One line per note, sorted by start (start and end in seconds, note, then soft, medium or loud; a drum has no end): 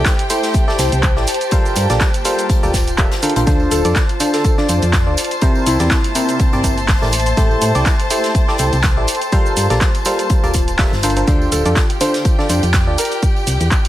0.00 0.13 A3 medium
0.00 0.11 E4 medium
0.00 0.13 E4 medium
0.00 0.13 G4 medium
0.00 2.16 G4 medium
0.00 3.48 G4 medium
0.00 0.13 A4 medium
0.00 4.16 C5 medium
0.00 0.13 D5 medium
0.00 3.48 G5 medium
0.00 4.16 A5 loud
0.06 kick loud
0.06 snare loud
0.06 clap loud
0.06 closed hi-hat medium
0.06 tambourine soft
0.06 shaker soft
0.19 closed hi-hat medium
0.19 tambourine soft
0.30 0.65 A3 medium
0.30 0.65 E4 medium
0.30 0.65 G4 medium
0.30 0.65 A4 medium
0.30 0.65 C5 loud
0.30 closed hi-hat medium
0.30 open hi-hat medium
0.30 tambourine medium
0.30 shaker medium
0.43 snare medium
0.43 closed hi-hat medium
0.43 tambourine soft
0.43 shaker soft
0.54 kick loud
0.54 closed hi-hat medium
0.54 tambourine soft
0.54 shaker soft
0.68 0.77 A3 medium
0.68 0.77 E4 medium
0.68 0.77 G4 medium
0.68 0.77 A4 medium
0.68 0.77 D5 loud
0.68 snare medium
0.79 0.89 C2 medium
0.79 0.92 A3 medium
0.79 0.92 E4 medium
0.79 0.92 G4 medium
0.79 0.92 A4 medium
0.79 0.92 C5 medium
0.79 snare loud
0.79 closed hi-hat medium
0.79 open hi-hat loud
0.79 tambourine medium
0.79 shaker medium
0.92 1.18 C2 medium
0.92 closed hi-hat medium
0.92 tambourine soft
0.92 shaker soft
1.03 kick loud
1.03 clap loud
1.03 closed hi-hat medium
1.03 tambourine soft
1.03 shaker soft
1.16 1.25 A1 loud
1.16 1.26 E4 medium
1.16 1.26 G4 medium
1.16 1.26 A4 medium
1.16 1.26 D5 medium
1.16 snare medium
1.27 5.18 F4 medium
1.27 closed hi-hat medium
1.27 open hi-hat loud
1.27 tambourine medium
1.27 shaker medium
1.34 closed hi-hat medium
1.41 closed hi-hat medium
1.41 tambourine soft
1.41 shaker soft
1.51 1.87 G3 loud
1.51 1.87 F4 medium
1.51 1.87 A4 medium
1.51 1.87 A#4 medium
1.51 1.87 C5 loud
1.51 kick loud
1.51 closed hi-hat medium
1.51 tambourine medium
1.51 shaker medium
1.56 3.47 A#3 medium
1.66 tambourine soft
1.66 shaker soft
1.76 1.87 G2 loud
1.76 closed hi-hat medium
1.76 open hi-hat loud
1.76 tambourine loud
1.76 shaker medium
1.90 1.98 A#1 loud
1.90 2.08 G3 medium
1.90 2.08 F4 medium
1.90 2.08 A4 medium
1.90 2.08 A#4 medium
1.90 2.08 D5 medium
1.90 snare soft
1.90 closed hi-hat medium
1.90 tambourine soft
1.90 shaker soft
2.00 kick loud
2.00 snare loud
2.00 clap loud
2.00 closed hi-hat loud
2.00 tambourine soft
2.00 shaker soft
2.14 closed hi-hat medium
2.14 tambourine soft
2.14 shaker soft
2.25 2.60 G3 medium
2.25 2.60 F4 medium
2.25 2.60 A4 medium
2.25 2.60 A#4 medium
2.25 2.60 C5 loud
2.25 closed hi-hat medium
2.25 open hi-hat loud
2.25 tambourine medium
2.25 shaker medium
2.39 closed hi-hat medium
2.39 tambourine soft
2.39 shaker soft
2.50 kick loud
2.50 closed hi-hat medium
2.50 tambourine soft
2.50 shaker soft
2.63 3.07 D1 medium
2.63 2.72 G3 medium
2.63 2.72 F4 medium
2.63 2.72 A4 medium
2.63 2.72 A#4 medium
2.63 2.72 D5 loud
2.63 closed hi-hat soft
2.63 tambourine soft
2.63 shaker soft
2.74 kick medium
2.74 snare loud
2.74 closed hi-hat medium
2.74 open hi-hat loud
2.74 tambourine loud
2.74 shaker medium
2.87 closed hi-hat medium
2.87 tambourine soft
2.87 shaker soft
2.98 3.11 G3 medium
2.98 3.11 F4 medium
2.98 3.11 A4 medium
2.98 3.11 A#4 medium
2.98 3.11 E5 loud
2.98 kick loud
2.98 clap loud
2.98 closed hi-hat medium
2.98 tambourine soft
2.98 shaker soft
3.11 snare loud
3.11 closed hi-hat medium
3.11 tambourine soft
3.11 shaker soft
3.22 3.34 D3 medium
3.22 3.34 F4 medium
3.22 3.34 A4 medium
3.22 3.34 A#4 medium
3.22 3.34 C5 loud
3.22 open hi-hat loud
3.22 tambourine medium
3.22 shaker medium
3.30 closed hi-hat medium
3.36 3.45 A#1 medium
3.36 3.45 D3 medium
3.36 3.45 F4 medium
3.36 3.45 A4 medium
3.36 3.45 A#4 medium
3.36 3.45 C5 medium
3.36 closed hi-hat medium
3.36 tambourine soft
3.36 shaker soft
3.47 3.67 D2 loud
3.47 3.82 D3 loud
3.47 3.82 D4 medium
3.47 3.82 F4 loud
3.47 3.82 A4 medium
3.47 11.29 C5 medium
3.47 3.82 C5 loud
3.47 11.29 A5 medium
3.47 kick loud
3.47 closed hi-hat medium
3.47 tambourine soft
3.47 shaker soft
3.60 tambourine soft
3.69 3.82 D1 medium
3.69 3.92 A4 medium
3.69 5.96 D5 medium
3.69 closed hi-hat medium
3.69 open hi-hat loud
3.69 tambourine medium
3.69 shaker medium
3.85 3.93 F2 loud
3.85 4.03 D3 medium
3.85 4.03 D4 medium
3.85 4.03 F4 medium
3.85 4.03 A4 medium
3.85 4.03 D5 loud
3.85 closed hi-hat medium
3.85 tambourine soft
3.85 shaker soft
3.96 kick loud
3.96 snare loud
3.96 clap loud
3.96 closed hi-hat medium
3.96 tambourine medium
3.96 shaker soft
4.09 closed hi-hat medium
4.09 tambourine soft
4.20 4.55 D3 medium
4.20 4.55 D4 medium
4.20 4.55 F4 medium
4.20 4.55 A4 medium
4.20 4.55 C5 loud
4.20 closed hi-hat medium
4.20 open hi-hat loud
4.20 tambourine medium
4.20 shaker medium
4.24 13.77 C6 medium
4.33 4.54 A4 medium
4.33 snare medium
4.33 closed hi-hat medium
4.33 tambourine soft
4.33 shaker soft
4.44 kick loud
4.44 closed hi-hat medium
4.44 tambourine medium
4.44 shaker soft
4.57 4.67 D3 loud
4.57 4.67 D4 medium
4.57 4.67 F4 medium
4.57 4.67 A4 medium
4.57 4.67 D5 loud
4.57 snare soft
4.68 4.79 F2 loud
4.68 4.82 D3 medium
4.68 4.82 D4 medium
4.68 4.82 F4 medium
4.68 4.82 A4 medium
4.68 4.82 C5 medium
4.68 closed hi-hat medium
4.68 open hi-hat loud
4.68 tambourine medium
4.68 shaker medium
4.82 5.08 F2 loud
4.82 closed hi-hat medium
4.82 tambourine soft
4.82 shaker soft
4.93 kick loud
4.93 snare loud
4.93 clap loud
4.93 closed hi-hat medium
4.93 closed hi-hat loud
4.93 tambourine medium
4.93 shaker soft
5.07 5.15 D2 loud
5.07 5.16 D4 medium
5.07 5.16 F4 medium
5.07 5.16 A4 medium
5.07 5.16 D5 medium
5.17 7.13 A#3 medium
5.17 closed hi-hat medium
5.17 open hi-hat loud
5.17 tambourine medium
5.17 shaker medium
5.25 closed hi-hat medium
5.31 closed hi-hat medium
5.31 tambourine soft
5.31 shaker soft
5.38 5.77 C3 loud
5.38 5.77 E4 loud
5.38 5.77 G4 medium
5.38 5.77 A#4 medium
5.38 5.77 C5 loud
5.38 7.91 E5 medium
5.38 kick loud
5.38 closed hi-hat medium
5.38 tambourine soft
5.38 shaker soft
5.55 tambourine soft
5.66 5.77 C2 loud
5.66 6.35 E4 medium
5.66 closed hi-hat medium
5.66 open hi-hat loud
5.66 tambourine medium
5.66 shaker medium
5.79 5.89 E2 loud
5.79 5.98 C3 medium
5.79 5.98 E4 medium
5.79 5.98 G4 medium
5.79 5.98 A#4 medium
5.79 5.98 D5 medium
5.79 snare soft
5.79 closed hi-hat medium
5.79 tambourine soft
5.79 shaker soft
5.91 kick loud
5.91 snare loud
5.91 clap loud
5.91 closed hi-hat medium
5.91 tambourine soft
5.91 shaker soft
6.04 closed hi-hat medium
6.04 tambourine soft
6.15 6.50 C3 medium
6.15 6.50 E4 medium
6.15 6.50 G4 medium
6.15 6.50 A#4 medium
6.15 6.50 C5 loud
6.15 closed hi-hat medium
6.15 open hi-hat loud
6.15 tambourine loud
6.15 shaker medium
6.29 closed hi-hat medium
6.29 tambourine soft
6.29 shaker soft
6.40 kick loud
6.40 closed hi-hat medium
6.40 tambourine medium
6.40 shaker soft
6.53 6.97 G1 medium
6.53 6.62 C3 medium
6.53 6.62 E4 medium
6.53 6.62 G4 medium
6.53 6.62 A#4 medium
6.53 6.62 D5 loud
6.53 closed hi-hat soft
6.53 tambourine soft
6.64 6.77 C3 medium
6.64 6.77 E4 medium
6.64 6.77 G4 medium
6.64 6.77 A#4 medium
6.64 6.77 C5 medium
6.64 kick medium
6.64 closed hi-hat medium
6.64 open hi-hat loud
6.64 tambourine loud
6.64 shaker medium
6.78 closed hi-hat medium
6.78 tambourine soft
6.78 shaker soft
6.88 kick loud
6.88 snare loud
6.88 clap loud
6.88 closed hi-hat medium
6.88 open hi-hat medium
6.88 tambourine soft
6.88 shaker soft
7.02 7.33 A1 loud
7.02 7.12 A3 medium
7.02 7.12 E4 medium
7.02 7.12 G4 medium
7.02 7.12 A#4 medium
7.02 7.12 D5 medium
7.02 snare medium
7.02 tambourine soft
7.12 9.08 A4 medium
7.12 closed hi-hat medium
7.12 open hi-hat loud
7.12 tambourine medium
7.12 shaker medium
7.20 closed hi-hat medium
7.26 closed hi-hat medium
7.26 tambourine soft
7.26 shaker soft
7.37 7.57 A1 loud
7.37 7.72 A3 loud
7.37 7.72 E4 loud
7.37 7.72 G4 loud
7.37 7.72 A4 loud
7.37 7.72 C5 loud
7.37 kick loud
7.37 closed hi-hat medium
7.37 tambourine medium
7.37 shaker soft
7.51 9.97 G5 medium
7.51 tambourine soft
7.61 7.72 A2 loud
7.61 closed hi-hat medium
7.61 open hi-hat loud
7.61 tambourine loud
7.61 shaker medium
7.75 7.84 C2 loud
7.75 7.93 A3 medium
7.75 7.93 E4 medium
7.75 7.93 G4 medium
7.75 7.93 A4 medium
7.75 7.93 D5 loud
7.75 closed hi-hat medium
7.75 tambourine soft
7.75 shaker soft
7.86 kick loud
7.86 snare loud
7.86 clap loud
7.86 closed hi-hat medium
7.86 tambourine medium
7.86 shaker soft
8.00 closed hi-hat medium
8.00 tambourine soft
8.10 8.45 A3 medium
8.10 8.45 E4 medium
8.10 8.45 G4 medium
8.10 8.45 A4 medium
8.10 8.45 C5 loud
8.10 closed hi-hat medium
8.10 open hi-hat loud
8.10 tambourine medium
8.10 shaker medium
8.24 snare medium
8.24 closed hi-hat medium
8.24 tambourine soft
8.24 shaker soft
8.35 kick loud
8.35 closed hi-hat medium
8.35 tambourine medium
8.35 shaker soft
8.48 8.57 A3 medium
8.48 8.57 E4 medium
8.48 8.57 G4 medium
8.48 8.57 A4 medium
8.48 8.57 D5 loud
8.48 snare soft
8.58 8.70 C2 loud
8.58 8.72 A3 medium
8.58 8.72 E4 medium
8.58 8.72 G4 medium
8.58 8.72 A4 medium
8.58 8.72 C5 medium
8.58 closed hi-hat medium
8.58 open hi-hat loud
8.58 tambourine medium
8.58 shaker medium
8.73 8.99 C2 loud
8.73 closed hi-hat soft
8.73 tambourine soft
8.73 shaker soft
8.83 kick loud
8.83 snare loud
8.83 clap loud
8.83 closed hi-hat loud
8.83 closed hi-hat medium
8.83 tambourine medium
8.83 shaker soft
8.97 9.06 A1 loud
8.97 9.07 E4 medium
8.97 9.07 G4 medium
8.97 9.07 A4 medium
8.97 9.07 D5 medium
9.07 12.98 F4 loud
9.07 closed hi-hat medium
9.07 open hi-hat loud
9.07 tambourine loud
9.07 shaker medium
9.15 closed hi-hat medium
9.22 closed hi-hat soft
9.22 tambourine soft
9.22 shaker soft
9.27 11.28 A#3 medium
9.32 9.67 G3 loud
9.32 9.67 F4 medium
9.32 9.67 A4 loud
9.32 9.67 A#4 medium
9.32 9.67 C5 loud
9.32 kick loud
9.32 closed hi-hat medium
9.32 tambourine medium
9.32 shaker soft
9.46 tambourine soft
9.46 shaker soft
9.51 11.96 A5 medium
9.56 9.67 G2 loud
9.56 closed hi-hat medium
9.56 open hi-hat loud
9.56 tambourine medium
9.56 shaker medium
9.70 9.79 A#1 loud
9.70 9.88 G3 medium
9.70 9.88 F4 medium
9.70 9.88 A4 medium
9.70 9.88 A#4 medium
9.70 9.88 D5 loud
9.70 snare soft
9.70 closed hi-hat medium
9.70 tambourine soft
9.70 shaker soft
9.81 kick loud
9.81 snare loud
9.81 clap loud
9.81 closed hi-hat medium
9.81 tambourine medium
9.81 shaker soft
9.95 closed hi-hat medium
9.95 tambourine soft
10.05 10.40 G3 loud
10.05 10.40 F4 medium
10.05 10.40 A4 medium
10.05 10.40 A#4 medium
10.05 10.40 C5 loud
10.05 closed hi-hat medium
10.05 open hi-hat loud
10.05 tambourine loud
10.05 shaker medium
10.19 closed hi-hat medium
10.19 tambourine soft
10.19 shaker soft
10.30 kick loud
10.30 closed hi-hat medium
10.30 tambourine medium
10.30 shaker soft
10.43 10.87 D1 medium
10.43 10.52 G3 medium
10.43 10.52 F4 medium
10.43 10.52 A4 medium
10.43 10.52 A#4 medium
10.43 10.52 D5 loud
10.43 closed hi-hat soft
10.43 tambourine soft
10.53 kick medium
10.53 closed hi-hat medium
10.53 open hi-hat loud
10.53 tambourine loud
10.53 shaker medium
10.68 closed hi-hat soft
10.68 tambourine soft
10.68 shaker soft
10.79 10.92 G3 loud
10.79 10.92 F4 medium
10.79 10.92 A4 medium
10.79 10.92 A#4 medium
10.79 10.92 E5 loud
10.79 kick loud
10.79 snare loud
10.79 clap loud
10.79 closed hi-hat medium
10.79 open hi-hat medium
10.79 tambourine soft
10.79 shaker soft
10.92 11.24 G1 loud
10.92 snare medium
10.92 tambourine soft
11.03 11.15 D3 medium
11.03 11.15 F4 medium
11.03 11.15 A4 medium
11.03 11.15 A#4 medium
11.03 11.15 C5 loud
11.03 closed hi-hat medium
11.03 open hi-hat loud
11.03 tambourine loud
11.03 shaker medium
11.10 closed hi-hat medium
11.16 11.26 D3 medium
11.16 11.26 F4 medium
11.16 11.26 A4 medium
11.16 11.26 A#4 medium
11.16 11.26 C5 medium
11.16 closed hi-hat medium
11.16 tambourine soft
11.16 shaker soft
11.27 11.47 D2 loud
11.27 11.62 D3 loud
11.27 11.62 D4 loud
11.27 11.62 F4 medium
11.27 13.88 G4 medium
11.27 11.62 A4 medium
11.27 11.62 C5 loud
11.27 13.88 G5 medium
11.27 kick loud
11.27 closed hi-hat medium
11.27 tambourine medium
11.27 shaker soft
11.42 tambourine soft
11.52 11.62 D1 loud
11.52 11.73 A4 medium
11.52 closed hi-hat medium
11.52 open hi-hat loud
11.52 tambourine medium
11.52 shaker medium
11.65 11.74 F2 loud
11.65 11.83 D3 medium
11.65 11.83 D4 medium
11.65 11.83 F4 medium
11.65 11.83 A4 medium
11.65 13.77 D5 medium
11.65 11.83 D5 loud
11.65 closed hi-hat medium
11.65 tambourine soft
11.65 shaker soft
11.76 kick loud
11.76 snare loud
11.76 clap loud
11.76 closed hi-hat medium
11.76 tambourine medium
11.76 shaker soft
11.90 closed hi-hat medium
11.90 tambourine soft
12.01 12.35 D3 medium
12.01 12.35 D4 medium
12.01 12.35 F4 medium
12.01 12.35 A4 medium
12.01 12.35 C5 loud
12.01 12.22 C5 loud
12.01 closed hi-hat medium
12.01 open hi-hat loud
12.01 tambourine medium
12.01 shaker medium
12.14 snare medium
12.14 closed hi-hat medium
12.14 tambourine soft
12.14 shaker soft
12.25 kick loud
12.25 closed hi-hat medium
12.25 tambourine medium
12.25 shaker soft
12.39 12.47 D3 loud
12.39 12.47 D4 medium
12.39 12.47 F4 medium
12.39 12.47 A4 medium
12.39 12.47 D5 loud
12.39 snare soft
12.49 12.60 F2 loud
12.49 12.62 D3 medium
12.49 12.62 D4 medium
12.49 12.62 F4 medium
12.49 12.62 A4 medium
12.49 12.62 C5 medium
12.49 closed hi-hat medium
12.49 open hi-hat loud
12.49 tambourine medium
12.49 shaker medium
12.63 12.89 F2 medium
12.63 closed hi-hat soft
12.63 tambourine soft
12.63 shaker soft
12.73 kick loud
12.73 snare loud
12.73 clap loud
12.73 closed hi-hat loud
12.73 closed hi-hat medium
12.73 tambourine soft
12.73 shaker soft
12.87 12.96 D2 loud
12.87 12.97 D4 medium
12.87 12.97 F4 medium
12.87 12.97 A4 medium
12.87 12.97 D5 medium
12.98 13.88 E4 medium
12.98 13.19 A#4 medium
12.98 closed hi-hat medium
12.98 open hi-hat loud
12.98 tambourine medium
12.98 shaker medium
13.05 closed hi-hat medium
13.11 closed hi-hat soft
13.11 tambourine soft
13.11 shaker soft
13.23 kick loud
13.23 closed hi-hat medium
13.23 tambourine soft
13.23 shaker soft
13.36 13.88 C5 medium
13.36 tambourine soft
13.47 13.57 C2 loud
13.47 open hi-hat loud
13.47 tambourine medium
13.47 shaker medium
13.53 13.88 A#5 medium
13.60 13.69 E2 loud
13.60 closed hi-hat medium
13.60 tambourine soft
13.60 shaker soft
13.71 kick loud
13.71 clap loud
13.71 tambourine medium
13.71 shaker medium
13.85 closed hi-hat medium
13.85 tambourine soft